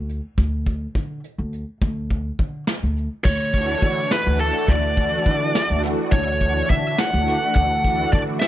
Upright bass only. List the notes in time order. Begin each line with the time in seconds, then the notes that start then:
Already playing: D2
0.38 D2
0.95 D3
1.38 D2
1.82 D2
2.39 D3
2.83 D2
3.25 D2
3.82 D3
4.26 D2
4.68 D2
5.26 D3
5.70 D2
6.12 D2
6.70 D3
7.13 D2
7.56 D2
8.13 D3